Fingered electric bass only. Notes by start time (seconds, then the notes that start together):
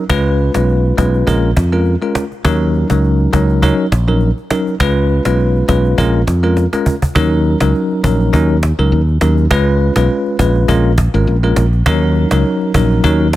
0.10 C#2
0.55 B1
0.98 B1
1.27 A#1
1.57 F2
2.45 D#2
2.90 C#2
3.33 C#2
3.92 A#1
4.80 C#2
5.26 B1
5.69 B1
5.98 A#1
6.27 F2
7.16 D#2
7.61 C#2
8.04 A#1
8.33 D#2
8.79 C#2
8.92 D#2
9.21 D#2
9.51 C#2
9.96 B1
10.39 A#1
10.69 A#1
11.14 G#1
11.27 A#1
11.57 A#1
11.86 D#2
12.32 C#2
12.74 A#1
13.04 D#2